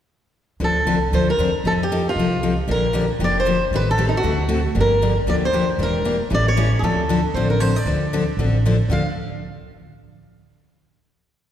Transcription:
0.60 upright bass D2, steel-string acoustic guitar D3 F3 C4 D4 A4
0.64 steel-string acoustic guitar A4
0.85 upright bass C2, steel-string acoustic guitar D3 F3 C4 D4 A4
1.12 upright bass D2, steel-string acoustic guitar D3 F3 C4 D4 A4 C5
1.30 steel-string acoustic guitar A#4
1.38 upright bass E2, steel-string acoustic guitar D3 F3 C4 D4 A4
1.64 upright bass F2, steel-string acoustic guitar F3 C4 D#4 A4
1.83 steel-string acoustic guitar G4
1.92 steel-string acoustic guitar F3 C4 D#4 A4
2.09 steel-string acoustic guitar F4
2.16 upright bass C2, steel-string acoustic guitar F3 C4 A4
2.20 steel-string acoustic guitar D#4
2.43 steel-string acoustic guitar F3 C4 D#4 A4
2.68 upright bass A#1, steel-string acoustic guitar D3 F3 A#3 D4 G4 A#4
2.93 steel-string acoustic guitar D3 F3 A#3 D4 G4
3.19 upright bass F1, steel-string acoustic guitar D3 F3 A#3 D4 G4
3.24 steel-string acoustic guitar D5
3.40 steel-string acoustic guitar C5
3.45 steel-string acoustic guitar D3 F3 A#3 D4 G4
3.71 upright bass A1, steel-string acoustic guitar D#3 G3 C4 G4 A4
3.75 steel-string acoustic guitar B4
3.91 steel-string acoustic guitar A4
3.98 steel-string acoustic guitar D#3 G3 C4 G4 A4
4.09 steel-string acoustic guitar D#4
4.17 steel-string acoustic guitar F#4
4.23 upright bass D2, steel-string acoustic guitar D3 A3 C4 F#4 A4
4.49 steel-string acoustic guitar D3 A3 C4 F#4 A4
4.75 upright bass G1, steel-string acoustic guitar D3 F3 A#3 D4 G4
4.80 steel-string acoustic guitar A#4
5.02 steel-string acoustic guitar D3 F3 A#3 D4 G4
5.26 upright bass D2, steel-string acoustic guitar D3 F3 A#3 D4 G4 D5
5.45 steel-string acoustic guitar C5
5.53 steel-string acoustic guitar D3 F3 A#3 D4 G4
5.78 upright bass E1, steel-string acoustic guitar E3 A#3 D4 G4
5.83 steel-string acoustic guitar A#4
6.05 steel-string acoustic guitar E3 A#3 D4 G4
6.30 upright bass A1, steel-string acoustic guitar E3 G3 C#4 E4 A4
6.34 steel-string acoustic guitar D5
6.48 steel-string acoustic guitar C#5
6.57 steel-string acoustic guitar E3 G3 C#4 E4 A4
6.79 upright bass D2, steel-string acoustic guitar D3 G#4
6.83 steel-string acoustic guitar F3 C4 D4 A4
7.09 steel-string acoustic guitar D3 F3 C4 D4 A4
7.34 upright bass A1, steel-string acoustic guitar D3 F3 C4 D4 A4 C5
7.50 steel-string acoustic guitar A#4
7.60 steel-string acoustic guitar D3 F3 C4 D4 A4 C5
7.76 steel-string acoustic guitar D5
7.86 upright bass D2, steel-string acoustic guitar D3 F3 C4 D4 A4
8.13 steel-string acoustic guitar D3 F3 C4 D4 A4
8.37 upright bass A1, steel-string acoustic guitar D3 F3 C4 D4 A4
8.65 steel-string acoustic guitar D3 F3 C4 D4 A4
8.89 upright bass D2, steel-string acoustic guitar D3 F3 C4 D4 A4 F5

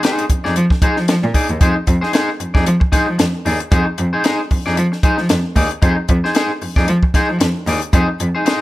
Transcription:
0.03 clean electric guitar D#4 G#4 C5, snare, closed hi-hat
0.18 closed hi-hat
0.30 cello F2, muted clean electric guitar stroke, kick, closed hi-hat
0.44 cello F2, clean electric guitar D#4 G#4 D5, snare
0.56 cello F3, closed hi-hat
0.70 muted clean electric guitar stroke, kick, snare
0.82 cello F3, clean electric guitar D#4 G#4 C5, kick, closed hi-hat
0.97 cello F3, muted clean electric guitar stroke, snare
1.08 cello F3, muted clean electric guitar stroke, snare, closed hi-hat
1.24 cello A#2
1.34 clean electric guitar D#4 G#4 D5, kick, open hi-hat
1.49 cello D#2, muted clean electric guitar stroke, closed hi-hat
1.61 cello F2, clean electric guitar D#4 G#4 C5, kick, closed hi-hat
1.76 muted clean electric guitar stroke
1.87 cello F2, muted clean electric guitar stroke, kick, closed hi-hat
2.01 clean electric guitar D#4 G#4 C5, snare
2.13 clean electric guitar D#4 G#4 C5, snare, closed hi-hat
2.40 cello F2, muted clean electric guitar stroke, closed hi-hat
2.54 cello F2, clean electric guitar D#4 G#4 D5, kick, snare
2.66 cello F3, closed hi-hat
2.80 muted clean electric guitar stroke, kick
2.92 cello F3, clean electric guitar D#4 G#4 C5, kick, snare, closed hi-hat
3.07 cello F3, muted clean electric guitar stroke
3.19 cello F2, muted clean electric guitar stroke, snare, closed hi-hat
3.45 cello D#2, clean electric guitar D#4 G#4 D5, snare, open hi-hat
3.60 muted clean electric guitar stroke, closed hi-hat
3.71 cello F2, clean electric guitar D#4 G#4 C5, kick, closed hi-hat
3.86 muted clean electric guitar stroke
3.98 cello F2, muted clean electric guitar stroke, closed hi-hat
4.13 clean electric guitar D#4 G#4 C5
4.24 clean electric guitar D#4 G#4 C5, snare, closed hi-hat
4.51 cello F2, muted clean electric guitar stroke, kick, open hi-hat
4.66 cello F2, clean electric guitar D#4 G#4 D5, snare
4.77 cello F3, closed hi-hat
4.92 muted clean electric guitar stroke, snare
5.03 cello F3, clean electric guitar D#4 G#4 C5, kick, closed hi-hat
5.18 cello F3, muted clean electric guitar stroke, snare
5.29 cello F2, muted clean electric guitar stroke, snare, closed hi-hat
5.56 cello D#2, clean electric guitar D#4 G#4 D5, kick, open hi-hat
5.71 muted clean electric guitar stroke, closed hi-hat
5.82 cello F2, clean electric guitar D#4 G#4 C5, kick, closed hi-hat
5.97 muted clean electric guitar stroke
6.08 cello F2, muted clean electric guitar stroke, kick, closed hi-hat
6.24 clean electric guitar D#4 G#4 C5, snare
6.35 clean electric guitar D#4 G#4 C5, snare, closed hi-hat
6.61 cello F2, muted clean electric guitar stroke, open hi-hat
6.76 cello F2, clean electric guitar D#4 G#4 D5, kick, snare
6.88 cello F3, closed hi-hat
7.03 muted clean electric guitar stroke, kick
7.14 cello F3, clean electric guitar D#4 G#4 C5, kick, snare, closed hi-hat
7.29 cello F3, muted clean electric guitar stroke
7.40 cello F2, muted clean electric guitar stroke, snare, closed hi-hat
7.67 cello D#2, clean electric guitar D#4 G#4 D5, snare, open hi-hat
7.82 muted clean electric guitar stroke, closed hi-hat
7.93 cello F2, clean electric guitar D#4 G#4 C5, kick, closed hi-hat
8.08 muted clean electric guitar stroke
8.20 cello F2, muted clean electric guitar stroke, closed hi-hat
8.35 clean electric guitar D#4 G#4 C5
8.45 clean electric guitar D#4 G#4 C5, snare, closed hi-hat

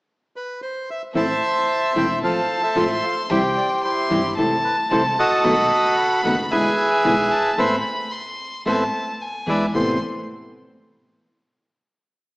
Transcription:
0.36 bandoneon B4
0.62 bandoneon C5
0.90 bandoneon E5
1.14 upright bass A1, nylon-string guitar E3 A3 C4 E4, string section C4 E4 A4, bandoneon C5 E5 A5, violin E5
1.95 upright bass E1, nylon-string guitar E3 A3 C4 E4, string section C4 E4 A4, bandoneon G5
2.22 upright bass A1, nylon-string guitar F3 A3 C4 F4, string section C4 F4 A4, bandoneon A4 C5 F5, violin A5
2.63 bandoneon A4 C5 E5
2.75 upright bass A1, nylon-string guitar F3 A3 C4 F4, string section C4 F4 A4, violin C6
3.04 bandoneon F5
3.30 upright bass C2, nylon-string guitar C3 E3 G3 C4 E4, string section C4 E4 G4, bandoneon G4 C5 E5, violin G5
3.57 bandoneon D5
3.84 bandoneon E4 G4 C5, violin C6
4.10 upright bass G1, nylon-string guitar C3 E3 G3 C4 E4, string section C4 E4 G4
4.37 upright bass C2, nylon-string guitar C3 E3 A3 C4 E4, string section C4 E4 A4, violin A5
4.64 bandoneon B4
4.91 upright bass C2, nylon-string guitar C3 E3 A3 C4 E4, string section C4 E4 A4, bandoneon C5
5.19 bandoneon F#4 A4 D#5
5.43 upright bass B1, nylon-string guitar B2 D#3 A3 B3 F#4, string section B3 D#4 A4, violin B5
6.24 upright bass F#1, nylon-string guitar B2 D#3 A3 B3 F#4, string section B3 D#4 A4, bandoneon F#5
6.51 upright bass E2, nylon-string guitar B2 D3 G#3 B3 E4, string section D4 E4 G#4, bandoneon G#4 B4 E5, violin G#5
7.04 upright bass B1, nylon-string guitar B2 D3 G#3 B3 E4, string section D4 E4 G#4, violin G#5
7.31 violin A5
7.58 upright bass A1, nylon-string guitar A3 B3 C4, string section C4 E4 A4, bandoneon B4 C5 E5, violin B5
8.11 violin C6
8.66 upright bass A1, nylon-string guitar A3 B3 C4, string section C4 E4 A4, bandoneon B4 C5 E5, violin A5
9.22 violin G#5
9.47 upright bass E2, nylon-string guitar E3 G#3 B3, string section D4 E4 G#4, bandoneon B4 D5 E5
9.74 upright bass A1, nylon-string guitar A2 C3 E3 A3 B3 E4, string section C4 A4 B4, bandoneon C5, violin C6

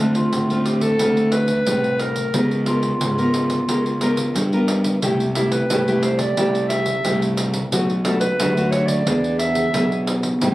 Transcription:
Already playing: fingered electric bass D2, nylon-string guitar D3
0.00 nylon-string guitar A3 C4 F4, clarinet D4
0.14 clarinet F4, pandeiro
0.33 fingered electric bass D2, nylon-string guitar A2, pandeiro
0.50 nylon-string guitar A3 C4 F4, pandeiro
0.66 clarinet G4, pandeiro
0.81 clarinet A4, pandeiro
0.99 fingered electric bass D2, nylon-string guitar D3 A3 C4 F4, pandeiro
1.17 pandeiro
1.32 clarinet B4, pandeiro
1.48 pandeiro
1.67 fingered electric bass C2, nylon-string guitar A2 A3 C4 F4, pandeiro
1.84 pandeiro
2.00 clarinet A#4, pandeiro
2.16 pandeiro
2.34 fingered electric bass C#2, nylon-string guitar C#3 B3 F4 A#4, pandeiro
2.51 pandeiro
2.66 nylon-string guitar B3 F4 A#4, clarinet F4, pandeiro
2.83 pandeiro
3.01 fingered electric bass C#2, nylon-string guitar G#2, pandeiro
3.18 nylon-string guitar B3 F4 A#4, pandeiro
3.34 pandeiro
3.50 pandeiro
3.68 fingered electric bass C#2, nylon-string guitar C#3 B3 F4 A#4, pandeiro
3.86 pandeiro
4.01 nylon-string guitar B3 F4 A#4, pandeiro
4.17 pandeiro
4.35 fingered electric bass G2, pandeiro
4.53 nylon-string guitar B3 F4 A#4, pandeiro
4.68 pandeiro
4.84 pandeiro
5.02 fingered electric bass C2, nylon-string guitar C3 A3 E4 G4, pandeiro
5.20 pandeiro
5.35 nylon-string guitar A3 E4 G4, clarinet G4, pandeiro
5.51 clarinet B4, pandeiro
5.70 fingered electric bass C2, nylon-string guitar G2 A3 E4 G4, pandeiro
5.88 nylon-string guitar A3 E4 G4, pandeiro
6.02 clarinet C5, pandeiro
6.18 clarinet D5, pandeiro
6.37 fingered electric bass C2, nylon-string guitar C3 A3 E4 G4, pandeiro
6.55 pandeiro
6.68 clarinet E5, pandeiro
6.86 pandeiro
7.04 fingered electric bass C2, nylon-string guitar G2 A3 E4 G4, pandeiro
7.22 pandeiro
7.37 pandeiro
7.54 pandeiro
7.72 fingered electric bass B1, nylon-string guitar B2 A3 D4 F#4, pandeiro
7.90 pandeiro
8.05 nylon-string guitar A3 D4 F#4, clarinet A4, pandeiro
8.20 clarinet B4, pandeiro
8.40 fingered electric bass D2, nylon-string guitar F#2 A3 D4 F#4, pandeiro
8.57 nylon-string guitar A3 D4 F#4, pandeiro
8.71 clarinet C#5, pandeiro
8.87 clarinet D5, pandeiro
9.06 fingered electric bass E2, nylon-string guitar E3 B3 D4 G#4, pandeiro
9.24 pandeiro
9.39 clarinet E5, pandeiro
9.55 pandeiro
9.74 fingered electric bass B1, nylon-string guitar B2 B3 D4 G#4, pandeiro
9.92 pandeiro
10.07 pandeiro
10.23 pandeiro
10.41 fingered electric bass A1, nylon-string guitar A2 G3 C4 E4, pandeiro

